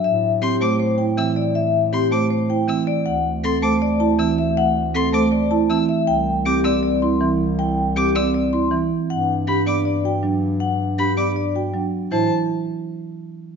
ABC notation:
X:1
M:4/4
L:1/8
Q:1/4=159
K:Ador
V:1 name="Violin"
z2 c' d' z2 e' z | z2 c' d' z2 e' z | z2 c' d' z2 e' z | z2 c' d' z2 e' z |
z2 d' e' z4 | z2 d' e' z4 | z2 b d' z4 | z2 b d' z4 |
a z6 z |]
V:2 name="Vibraphone"
e z G z c g z d | e z G z c g z d | f z A z d a z e | f z A z d a z e |
g z G z d c' z2 | g z G z d c' z2 | f z G z d g z2 | f z G z d g z2 |
c z6 z |]
V:3 name="Marimba"
z2 C c z E C z | z2 C c z E C z | z2 C c z E C z | z2 C c z E C z |
z2 C d z E C z | z2 C d z E C z | z2 D d z F D z | z2 D d z F D z |
E z6 z |]
V:4 name="Marimba" clef=bass
z3 A, z2 E, z | z3 A, z2 E, z | z3 A, z2 E, z | z3 A, z2 E, z |
z3 C z2 E, z | z3 C z2 E, z | z3 B, z2 F, z | z3 B, z2 F, z |
E, z6 z |]
V:5 name="Bass clarinet" clef=bass
A,,8- | A,,8 | D,,8- | D,,8 |
C,,8- | C,,8 | G,,8- | G,,8 |
A,, z6 z |]